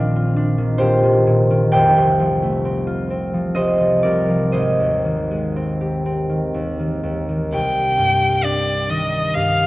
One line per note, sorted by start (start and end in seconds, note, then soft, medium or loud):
0.00 1.79 A#1 medium
0.00 0.80 A#2 medium
0.00 0.57 D#3 medium
0.00 2.18 F3 medium
0.00 2.64 C4 medium
0.00 0.35 D4 medium
0.00 0.15 F4 medium
0.00 1.78 D5 medium
0.00 1.78 D#5 medium
0.00 2.98 F5 loud
0.16 2.86 F4 medium
0.36 1.79 D4 medium
0.58 1.02 D#3 medium
0.78 1.25 A#2 medium
0.78 4.69 G4 medium
0.78 1.72 C5 loud
1.03 1.49 D#3 medium
1.27 1.79 A#2 medium
1.50 1.79 D#3 medium
1.72 4.58 F1 medium
1.72 3.55 C5 medium
1.72 5.62 G5 loud
1.96 3.56 C2 medium
2.19 3.33 F3 medium
2.42 4.58 A3 medium
2.65 3.09 C4 medium
2.87 4.58 F4 medium
3.10 5.55 C4 medium
3.34 3.80 F3 soft
3.55 4.04 C2 soft
3.55 4.52 C5 medium
3.55 4.38 D#5 loud
3.81 4.27 F3 soft
4.03 4.58 C2 soft
4.03 4.58 A#4 medium
4.03 4.89 D5 medium
4.29 4.58 F3 soft
4.52 7.57 G#1 medium
4.52 8.43 C5 medium
4.52 8.42 D#5 medium
4.80 6.53 D#2 soft
5.05 6.28 D#3 soft
5.31 7.57 G#3 soft
5.56 6.04 C4 soft
5.81 9.67 G4 soft
6.06 9.67 C4 medium
6.29 6.78 D#3 soft
6.54 7.02 D#2 soft
6.79 7.28 D#3 soft
7.03 7.56 D#2 soft
7.29 7.56 D#3 soft
7.52 9.67 C2 medium
7.52 8.45 G5 medium
7.98 9.34 G2 soft
8.44 9.67 D4 soft
8.44 8.91 D5 medium
8.89 9.67 D#3 soft
8.89 9.36 D#5 medium
9.34 9.67 G2 soft
9.34 9.67 F5 medium